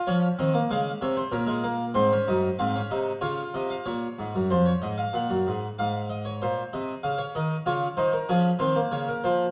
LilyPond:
<<
  \new Staff \with { instrumentName = "Harpsichord" } { \time 3/4 \key des \major \tempo 4 = 95 << { des''8 ees''8 f''8 des''16 c''16 bes'4 | c''4 f''8 ees''8 des''8 ees''16 f''16 | des''4 c''16 des''16 ees''16 f''16 ges''4 | f''8 ees''16 des''16 c''8 ees''8 f''16 des''16 ees''8 |
\key des \lydian des''8 c''16 bes'16 aes'8 c''8 des''16 bes'16 c''8 | } \\ { des'8 c'16 bes16 aes8 c'8 des'16 aes16 bes8 | c'16 des'16 ees'8 c'16 des'16 ees'8 f'4 | r2. | r2. |
f'8 ees'8 des'8 c'16 bes4~ bes16 | } >> }
  \new Staff \with { instrumentName = "Harpsichord" } { \clef bass \time 3/4 \key des \major f8 ees8 des8 c8 bes,4 | aes,8 ges,8 aes,8 c8 des8 c8 | bes,8 aes,16 ges,16 f,8 aes,8 bes,16 ges,16 aes,8 | aes,4 bes,8 c8 des8 ees8 |
\key des \lydian des8 ees8 f8 ees8 des8 f8 | }
>>